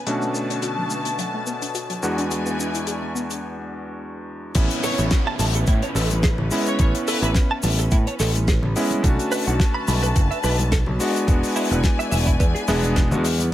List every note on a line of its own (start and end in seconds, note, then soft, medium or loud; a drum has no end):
0.00 1.99 B4 medium
0.06 2.00 B2 medium
0.06 2.01 D3 medium
0.06 0.15 F#3 medium
0.06 2.00 A3 medium
0.06 2.00 C#4 medium
0.06 2.00 D4 medium
0.06 2.01 F#4 medium
0.06 2.01 A5 medium
0.06 closed hi-hat medium
0.06 shaker medium
0.22 0.25 A3 loud
0.22 shaker soft
0.35 0.41 B3 medium
0.35 shaker medium
0.50 0.53 D4 medium
0.50 closed hi-hat medium
0.50 shaker soft
0.62 0.72 F#4 medium
0.62 closed hi-hat medium
0.62 shaker medium
0.78 0.83 F#3 medium
0.90 0.97 A3 medium
0.90 shaker medium
1.05 1.09 B3 medium
1.05 closed hi-hat medium
1.05 shaker soft
1.19 1.28 F#3 medium
1.19 closed hi-hat medium
1.19 shaker soft
1.34 1.37 A3 medium
1.47 1.53 B3 medium
1.47 shaker medium
1.62 1.65 D4 medium
1.62 closed hi-hat medium
1.62 shaker soft
1.75 1.84 F#4 medium
1.75 closed hi-hat medium
1.75 shaker medium
1.90 1.95 F#3 medium
1.90 closed hi-hat soft
2.02 4.52 E2 medium
2.02 4.52 G#3 medium
2.02 2.09 B3 medium
2.02 4.52 B3 medium
2.02 4.53 D4 medium
2.02 3.42 E4 medium
2.02 4.53 F#4 medium
2.02 3.42 D5 medium
2.02 3.42 G#5 medium
2.02 shaker medium
2.18 2.21 D4 medium
2.18 closed hi-hat medium
2.18 shaker soft
2.31 2.40 G#3 medium
2.31 closed hi-hat medium
2.31 shaker medium
2.46 2.49 B3 loud
2.46 shaker soft
2.59 2.65 D4 medium
2.59 shaker medium
2.74 2.77 E4 medium
2.74 closed hi-hat medium
2.74 shaker soft
2.87 2.96 G#4 medium
2.87 closed hi-hat medium
2.87 shaker medium
3.02 3.07 G#3 medium
3.15 3.21 B3 medium
3.15 shaker medium
3.30 3.33 D4 medium
3.30 closed hi-hat medium
3.30 shaker soft
4.55 4.68 A1 loud
4.55 6.48 B3 medium
4.55 9.00 C#4 medium
4.55 6.49 C#4 medium
4.55 6.49 E4 medium
4.55 9.00 B4 medium
4.55 kick loud
4.55 closed hi-hat medium
4.55 crash loud
4.55 downlifter medium
4.55 shaker medium
4.70 closed hi-hat medium
4.70 shaker soft
4.83 4.95 A4 loud
4.83 4.98 C#5 medium
4.83 open hi-hat loud
4.83 shaker medium
4.98 5.09 A1 loud
4.98 5.05 E5 medium
4.98 closed hi-hat medium
4.98 shaker medium
5.11 kick loud
5.11 snare loud
5.11 closed hi-hat medium
5.11 shaker medium
5.27 5.33 A5 loud
5.39 5.63 A1 loud
5.39 5.44 A5 loud
5.39 open hi-hat loud
5.39 high conga medium
5.39 shaker medium
5.54 5.59 A4 medium
5.54 closed hi-hat medium
5.54 shaker soft
5.67 5.80 A2 medium
5.67 5.72 E4 medium
5.67 kick loud
5.67 closed hi-hat medium
5.67 shaker medium
5.82 5.89 C#5 medium
5.82 closed hi-hat medium
5.95 6.35 A1 loud
5.95 6.07 A4 loud
5.95 open hi-hat loud
5.95 shaker medium
6.10 closed hi-hat medium
6.10 high conga medium
6.10 shaker medium
6.23 6.28 G#4 loud
6.23 kick loud
6.23 snare loud
6.23 closed hi-hat medium
6.23 shaker medium
6.38 6.49 A1 medium
6.38 low conga medium
6.51 6.76 G#3 medium
6.51 6.76 B3 medium
6.51 6.76 C#4 medium
6.51 6.77 E4 medium
6.51 open hi-hat loud
6.51 shaker medium
6.66 6.75 C#5 medium
6.66 closed hi-hat medium
6.66 shaker soft
6.79 6.92 A1 loud
6.79 8.73 B3 medium
6.79 8.73 C#4 medium
6.79 8.73 E4 medium
6.79 6.89 C#5 medium
6.79 kick loud
6.79 closed hi-hat medium
6.79 shaker medium
6.95 closed hi-hat medium
6.95 shaker soft
7.08 7.19 A4 loud
7.08 7.18 B4 medium
7.08 open hi-hat loud
7.08 shaker medium
7.22 7.33 A1 loud
7.22 7.31 B4 medium
7.22 7.29 E5 medium
7.22 closed hi-hat medium
7.22 shaker soft
7.35 kick loud
7.35 snare loud
7.35 closed hi-hat medium
7.35 shaker medium
7.51 7.57 A5 loud
7.63 7.87 A1 medium
7.63 7.68 A5 loud
7.63 open hi-hat loud
7.63 high conga medium
7.63 shaker loud
7.79 7.83 A4 loud
7.79 closed hi-hat medium
7.79 shaker medium
7.91 8.04 A2 medium
7.91 7.96 E4 medium
7.91 kick loud
7.91 closed hi-hat medium
7.91 shaker medium
8.07 8.13 C#5 medium
8.07 closed hi-hat medium
8.19 8.59 A1 loud
8.19 8.31 A4 loud
8.19 snare medium
8.19 open hi-hat loud
8.19 shaker medium
8.35 closed hi-hat medium
8.35 high conga medium
8.35 shaker soft
8.48 8.52 G#4 loud
8.48 kick loud
8.48 snare loud
8.48 closed hi-hat medium
8.48 shaker medium
8.62 8.73 A1 medium
8.62 low conga medium
8.76 9.01 G#3 medium
8.76 9.01 B3 medium
8.76 9.01 C#4 medium
8.76 9.01 E4 medium
8.76 open hi-hat loud
8.76 shaker medium
8.90 closed hi-hat medium
8.90 high conga medium
8.90 shaker soft
9.03 9.16 B1 loud
9.03 10.99 D3 medium
9.03 10.96 A3 medium
9.03 10.97 C#4 medium
9.03 10.97 D4 medium
9.03 10.97 F#4 medium
9.03 10.99 B4 medium
9.03 10.98 A5 medium
9.03 kick loud
9.03 closed hi-hat medium
9.03 shaker medium
9.19 closed hi-hat medium
9.19 shaker soft
9.32 9.43 B4 loud
9.32 open hi-hat loud
9.32 shaker medium
9.47 9.58 B1 loud
9.47 9.53 F#5 medium
9.47 closed hi-hat medium
9.47 shaker medium
9.60 kick loud
9.60 snare loud
9.60 closed hi-hat medium
9.60 shaker medium
9.74 9.81 B5 loud
9.88 10.12 B1 loud
9.88 9.92 B5 loud
9.88 open hi-hat loud
9.88 high conga medium
9.88 shaker medium
10.03 10.07 B4 loud
10.03 closed hi-hat medium
10.03 shaker medium
10.15 10.29 F#1 medium
10.15 10.20 F#4 medium
10.15 kick loud
10.15 closed hi-hat medium
10.15 shaker medium
10.31 10.37 E5 medium
10.31 closed hi-hat soft
10.44 10.83 B1 medium
10.44 10.55 B4 loud
10.44 open hi-hat loud
10.44 shaker medium
10.59 closed hi-hat medium
10.59 high conga medium
10.59 shaker soft
10.72 10.76 A4 loud
10.72 kick loud
10.72 snare loud
10.72 closed hi-hat medium
10.72 shaker medium
10.86 10.98 B1 medium
10.86 low conga medium
10.99 11.24 G#3 medium
10.99 11.25 B3 medium
10.99 11.25 D4 medium
10.99 13.50 E4 medium
10.99 11.25 F#4 medium
10.99 13.50 D5 medium
10.99 13.50 G#5 medium
10.99 open hi-hat loud
10.99 shaker medium
11.16 closed hi-hat medium
11.16 shaker soft
11.27 11.41 E1 loud
11.27 12.65 G#3 medium
11.27 12.65 B3 medium
11.27 12.66 D4 medium
11.27 12.66 F#4 medium
11.27 kick loud
11.27 closed hi-hat medium
11.27 shaker medium
11.43 open hi-hat medium
11.43 shaker soft
11.56 11.67 E4 loud
11.56 open hi-hat loud
11.56 shaker medium
11.71 11.82 E1 loud
11.71 11.78 B4 medium
11.71 closed hi-hat medium
11.71 shaker medium
11.84 kick loud
11.84 snare loud
11.84 closed hi-hat medium
11.84 shaker medium
11.99 12.06 E5 loud
11.99 closed hi-hat soft
11.99 shaker soft
12.11 12.36 E1 medium
12.11 12.16 E5 loud
12.11 open hi-hat loud
12.11 high conga loud
12.11 shaker medium
12.27 12.31 E4 medium
12.27 kick medium
12.27 closed hi-hat medium
12.27 shaker medium
12.40 12.53 E2 medium
12.40 12.44 B3 medium
12.40 kick loud
12.40 closed hi-hat medium
12.40 shaker medium
12.55 12.61 G#4 medium
12.55 closed hi-hat soft
12.68 13.12 E1 medium
12.68 13.08 G#3 medium
12.68 13.08 B3 medium
12.68 13.08 D4 medium
12.68 12.79 E4 loud
12.68 13.08 G#4 loud
12.68 snare medium
12.68 open hi-hat loud
12.68 shaker medium
12.83 closed hi-hat soft
12.83 high conga medium
12.83 shaker soft
12.96 13.01 D4 loud
12.96 kick loud
12.96 snare loud
12.96 closed hi-hat medium
12.96 shaker medium
13.11 13.49 E2 medium
13.11 13.23 G#3 medium
13.11 13.23 B3 medium
13.11 13.24 D4 medium
13.11 13.24 F#4 medium
13.11 low conga medium
13.11 shaker soft
13.25 open hi-hat loud
13.25 shaker medium
13.39 closed hi-hat medium
13.39 high conga medium
13.39 shaker medium